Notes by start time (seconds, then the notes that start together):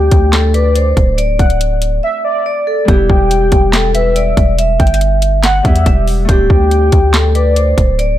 Already playing: D2 A3 C4 D4 E4 G4 G5
0.11 D2, kick, closed hi-hat
0.33 A4, snare, clap, closed hi-hat
0.54 B4 D5, closed hi-hat
0.76 C5, closed hi-hat
0.97 D1, kick, closed hi-hat
1.18 D5, closed hi-hat
1.39 D1 F#5, kick, closed hi-hat
1.50 closed hi-hat
1.61 closed hi-hat
1.82 closed hi-hat
2.03 E5
2.25 D5
2.46 D5
2.67 A4
2.85 E1 G3 B3 G4, kick, closed hi-hat
2.90 E4 G4
3.09 E1 G5, kick
3.31 closed hi-hat
3.52 E1, kick, closed hi-hat
3.73 A4, snare, clap, closed hi-hat
3.94 B4 E5, closed hi-hat
4.16 D5, closed hi-hat
4.37 E1, kick, closed hi-hat
4.59 E5, closed hi-hat
4.80 G1 G5, kick, closed hi-hat
4.87 closed hi-hat
4.94 closed hi-hat
5.01 closed hi-hat
5.22 closed hi-hat
5.43 F#5, snare, clap, closed hi-hat
5.63 E2 G3 B3 E4 G4 E5, kick, closed hi-hat
5.76 closed hi-hat
5.86 E1 E5, kick, closed hi-hat
6.08 open hi-hat
6.25 D1 A3 C4 G4, kick, closed hi-hat
6.30 D4 G4
6.50 D2 G5, kick
6.71 closed hi-hat
6.92 D2, kick, closed hi-hat
7.14 A4, snare, clap, closed hi-hat
7.35 B4 D5, closed hi-hat
7.56 C5, closed hi-hat
7.78 D1, kick, closed hi-hat
7.99 D5, closed hi-hat